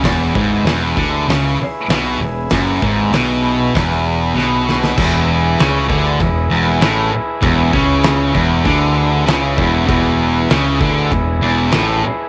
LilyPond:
<<
  \new Staff \with { instrumentName = "Transistor combo organ" } { \time 4/4 \key e \mixolydian \tempo 4 = 98 << { r1 | r2. b'4 | r1 | r1 |
r1 | } \\ { <e' gis' b'>1~ | <e' gis' b'>1 | <e' gis' b'>1~ | <e' gis' b'>1 |
<e' gis' b'>1 | } >> }
  \new Staff \with { instrumentName = "Distorted electric guitar" } { \clef bass \time 4/4 \key e \mixolydian e,8 gis,8 e,8 d8 cis8 r8 b,8 e,8 | fis,8 gis,8 b,4 e,4 b,4 | e,4 cis8 d8 e,8 e,8 a,8 r8 | e,8 cis4 e,8 d4 cis8 e,8 |
e,4 cis8 d8 e,8 e,8 a,8 r8 | }
  \new Staff \with { instrumentName = "Picked electric bass" } { \clef bass \time 4/4 \key e \mixolydian e,,8 gis,,8 e,,8 d,8 cis,8 r8 b,,8 e,,8 | fis,,8 gis,,8 b,,4 e,,4 b,,4 | e,,4 cis,8 d,8 e,,8 e,,8 a,,8 r8 | e,,8 cis,4 e,,8 d,4 cis,8 e,,8 |
e,,4 cis,8 d,8 e,,8 e,,8 a,,8 r8 | }
  \new DrumStaff \with { instrumentName = "Drums" } \drummode { \time 4/4 <hho bd sn>8 bd8 <hho sn>8 bd8 <hho sn>4 <hho sn>4 | <hho bd sn>8 bd8 <hho sn>4 <hho bd sn>4 sn8 sn16 sn16 | <cymc bd>4 <cymc sn>8 bd8 <cymc bd>4 <cymc sn>4 | <cymc bd>8 bd8 <cymc sn>8 bd8 <cymc bd>4 <cymc sn>8 bd8 |
<cymc bd>4 <cymc sn>8 bd8 <cymc bd>4 <cymc sn>4 | }
>>